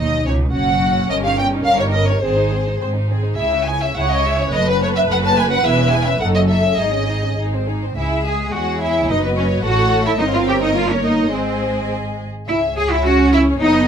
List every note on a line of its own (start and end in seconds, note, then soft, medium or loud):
0.00 0.26 D#2 medium
0.00 0.55 D#4 medium
0.00 0.26 D#5 medium
0.26 0.54 C#2 medium
0.26 0.34 C#4 medium
0.26 0.35 C#5 medium
0.53 1.09 F#1 medium
0.53 1.09 F#2 medium
0.53 1.65 C#4 medium
0.53 1.08 F#4 medium
0.53 1.09 F#5 medium
1.09 1.60 G1 medium
1.09 1.60 G2 medium
1.09 1.23 C#4 soft
1.09 1.23 A#4 medium
1.09 1.15 D#5 medium
1.23 1.38 D#4 medium
1.23 1.38 G4 medium
1.23 1.38 F5 medium
1.37 1.52 C#4 medium
1.37 1.52 A#4 medium
1.37 1.46 G5 medium
1.52 1.67 D#4 soft
1.52 1.67 G4 soft
1.65 2.18 G1 medium
1.65 2.18 G2 medium
1.65 1.80 C#4 medium
1.65 2.24 A#4 medium
1.65 1.80 A#4 medium
1.65 1.80 F5 medium
1.80 1.95 D#4 soft
1.80 1.95 G4 soft
1.80 1.86 C#5 medium
1.93 2.09 C#4 soft
1.93 2.09 A#4 soft
1.93 2.09 D#5 medium
2.08 2.24 D#4 soft
2.08 2.25 G4 soft
2.08 2.23 C#5 medium
2.22 2.75 G#1 medium
2.22 2.75 G#2 medium
2.22 2.37 C4 soft
2.22 2.37 G#4 soft
2.22 2.75 G#4 medium
2.22 2.81 C5 medium
2.37 2.52 D#4 soft
2.37 2.53 C5 soft
2.52 2.67 C4 soft
2.52 2.67 G#4 soft
2.66 2.81 D#4 soft
2.66 2.81 C5 soft
2.79 3.33 G#1 soft
2.79 3.33 G#2 soft
2.79 2.94 C4 soft
2.79 2.94 G#4 soft
2.79 2.90 C5 soft
2.95 3.10 D#4 soft
2.95 3.11 C5 soft
3.09 3.25 C4 soft
3.09 3.25 G#4 soft
3.09 3.39 G#4 soft
3.24 3.39 D#4 soft
3.24 3.39 C5 soft
3.38 3.90 C#2 medium
3.38 3.90 C#3 medium
3.38 3.51 E4 soft
3.38 3.52 G#4 soft
3.38 3.66 E5 medium
3.52 3.68 C#4 soft
3.52 3.67 E4 soft
3.68 3.80 E4 soft
3.68 3.82 G#4 soft
3.68 3.83 G#5 medium
3.81 3.96 C#4 soft
3.81 3.94 E4 soft
3.81 3.97 E5 medium
3.95 4.47 C#2 medium
3.95 4.47 C#3 medium
3.95 4.08 E4 soft
3.95 4.09 G#4 soft
3.95 4.50 C#5 medium
3.95 4.12 F#5 medium
4.09 4.25 C#4 soft
4.09 4.24 E4 soft
4.09 4.26 D#5 medium
4.24 4.37 E4 soft
4.24 4.39 G#4 soft
4.24 4.41 E5 medium
4.38 4.53 C#4 soft
4.38 4.53 E4 soft
4.43 4.55 C#5 medium
4.53 5.03 F#1 medium
4.53 5.03 F#2 medium
4.53 4.67 A3 medium
4.53 4.67 A4 medium
4.53 6.21 B4 medium
4.53 4.69 D#5 medium
4.67 4.82 C#4 soft
4.67 4.82 F#4 soft
4.67 4.83 B4 medium
4.80 4.95 A3 medium
4.80 4.95 A4 medium
4.80 4.89 C#5 medium
4.94 5.09 C#4 soft
4.94 5.09 F#4 medium
4.94 5.02 E5 medium
5.07 5.58 F#1 medium
5.07 5.58 F#2 medium
5.07 5.21 A3 medium
5.07 5.21 A4 medium
5.12 5.17 F#5 medium
5.21 5.36 C#4 medium
5.21 5.36 F#4 medium
5.26 5.38 A5 medium
5.35 5.50 A3 medium
5.35 5.50 A4 medium
5.35 5.44 G#5 medium
5.48 5.63 C#4 soft
5.48 5.63 F#4 medium
5.53 5.66 F#5 medium
5.63 6.14 E1 medium
5.63 6.13 E2 medium
5.63 5.76 E4 medium
5.63 5.77 G#4 medium
5.63 5.93 E5 medium
5.77 5.92 C#4 medium
5.77 5.91 E4 soft
5.91 6.05 E4 medium
5.91 6.06 G#4 medium
5.91 6.06 G#5 medium
6.06 6.20 C#4 soft
6.06 6.20 E4 soft
6.06 6.21 E5 medium
6.20 6.72 F#1 medium
6.20 6.72 F#2 medium
6.20 6.34 D#4 soft
6.20 6.34 A4 medium
6.20 6.79 A4 medium
6.20 6.27 F#5 medium
6.34 6.49 C#4 soft
6.34 6.49 F#4 soft
6.34 6.42 D#5 medium
6.49 6.64 D#4 soft
6.49 6.64 A4 soft
6.49 6.79 E5 medium
6.64 6.79 C#4 soft
6.64 6.79 F#4 soft
6.78 7.31 G#1 soft
6.78 7.31 G#2 medium
6.78 6.91 D#4 soft
6.78 6.92 G#4 soft
6.78 7.69 G#4 medium
6.78 7.39 D#5 medium
6.93 7.08 C#4 soft
6.93 7.08 D#4 soft
7.08 7.22 D#4 soft
7.08 7.23 G#4 soft
7.23 7.38 C#4 soft
7.23 7.37 D#4 soft
7.37 7.90 G#1 medium
7.37 7.91 G#2 soft
7.37 7.52 D#4 soft
7.37 7.53 G#4 soft
7.54 7.69 C4 soft
7.54 7.69 C5 soft
7.69 7.84 D#4 soft
7.69 7.83 G#4 soft
7.84 7.98 C4 soft
7.84 7.98 C5 soft
7.96 8.49 C#2 soft
7.96 9.05 G#3 medium
7.96 8.23 E4 medium
7.96 8.50 G#4 soft
7.96 8.50 E5 soft
7.96 8.24 E5 soft
8.26 8.53 G#4 medium
8.26 8.34 G#5 medium
8.53 9.09 E2 soft
8.53 8.82 F#4 medium
8.53 9.09 G#4 soft
8.53 9.10 C#5 soft
8.53 8.82 F#5 medium
8.81 9.08 E4 medium
8.81 9.09 E5 medium
9.09 9.64 F#1 medium
9.09 9.63 F#3 medium
9.09 9.23 D#4 medium
9.09 9.65 B4 soft
9.09 9.64 D#5 soft
9.09 9.23 D#5 medium
9.23 9.29 B3 medium
9.23 9.29 B4 medium
9.37 9.45 C#4 medium
9.37 9.64 C#5 medium
9.64 10.18 A1 medium
9.64 10.20 A3 medium
9.64 10.05 F#4 medium
9.64 10.19 A4 medium
9.64 10.18 C#5 medium
9.64 10.05 F#5 medium
10.05 10.11 E4 medium
10.05 10.19 E5 medium
10.19 11.29 G1 medium
10.19 10.76 C4 medium
10.19 10.25 D#4 medium
10.19 11.29 A#4 medium
10.19 11.29 C#5 medium
10.19 10.33 D#5 medium
10.34 10.40 F4 medium
10.34 10.48 F5 medium
10.48 10.54 G4 medium
10.48 10.62 G5 medium
10.62 10.76 D#4 medium
10.62 10.76 D#5 medium
10.76 11.33 A#3 medium
10.76 10.90 F4 medium
10.76 10.91 F5 medium
10.90 11.04 C#4 medium
10.90 11.04 C#5 medium
11.04 11.32 D#4 medium
11.04 11.34 D#5 medium
11.33 12.28 G#1 soft
11.33 12.18 G#3 medium
11.33 11.90 C4 medium
11.33 12.28 G#4 soft
11.33 11.92 C5 medium
11.33 12.28 D#5 soft
12.48 13.57 C#2 medium
12.48 12.56 E4 medium
12.48 13.57 G#4 soft
12.48 13.88 C#5 medium
12.48 12.75 E5 medium
12.77 12.91 G#4 medium
12.77 12.83 G#5 medium
12.92 13.05 E4 medium
12.92 13.05 E5 medium
13.05 13.57 C#4 medium
13.05 13.33 F#4 medium
13.05 13.14 F#5 medium
13.33 13.41 E4 medium
13.33 13.43 E5 medium
13.61 13.88 F#1 medium
13.61 13.88 B3 medium
13.61 13.88 D#4 medium
13.61 13.88 A4 medium
13.61 13.88 D#5 medium